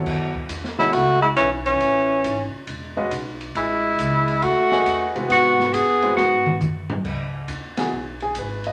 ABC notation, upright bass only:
X:1
M:4/4
L:1/8
Q:"Swing" 1/4=138
K:F#dor
V:1 name="Upright bass" clef=bass
F,,2 E,,2 C,,2 B,,,2 | A,,,2 G,,, z E,,,2 B,,,2 | A,,,2 C,,2 D,,2 E,,2 | G,,2 F,,2 G,,2 F,,2 |
[K:C#m] C,,2 D,,2 B,,,2 G,,,2 |]